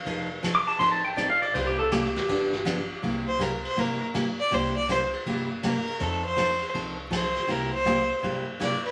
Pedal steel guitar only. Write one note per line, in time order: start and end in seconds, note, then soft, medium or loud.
0.00 0.28 F5 loud
0.55 0.67 D6 medium
0.67 0.79 A5 medium
0.79 0.91 C6 loud
0.92 1.04 A5 medium
1.05 1.17 G5 medium
1.17 1.29 D5 loud
1.30 1.42 F5 loud
1.42 1.54 D5 loud
1.54 1.66 C5 loud
1.67 1.79 G4 loud
1.79 1.91 A4 loud
1.92 2.03 G4 medium
2.04 3.00 G4 loud